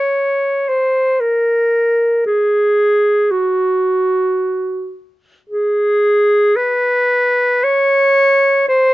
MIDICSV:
0, 0, Header, 1, 2, 480
1, 0, Start_track
1, 0, Tempo, 500000
1, 8581, End_track
2, 0, Start_track
2, 0, Title_t, "Clarinet"
2, 0, Program_c, 0, 71
2, 0, Note_on_c, 0, 73, 53
2, 662, Note_on_c, 0, 72, 45
2, 676, Note_off_c, 0, 73, 0
2, 1158, Note_on_c, 0, 70, 46
2, 1172, Note_off_c, 0, 72, 0
2, 2162, Note_off_c, 0, 70, 0
2, 2172, Note_on_c, 0, 68, 52
2, 3179, Note_on_c, 0, 66, 47
2, 3193, Note_off_c, 0, 68, 0
2, 4757, Note_off_c, 0, 66, 0
2, 5278, Note_on_c, 0, 68, 59
2, 6302, Note_on_c, 0, 71, 62
2, 6316, Note_off_c, 0, 68, 0
2, 7334, Note_on_c, 0, 73, 73
2, 7349, Note_off_c, 0, 71, 0
2, 8334, Note_off_c, 0, 73, 0
2, 8338, Note_on_c, 0, 72, 74
2, 8581, Note_off_c, 0, 72, 0
2, 8581, End_track
0, 0, End_of_file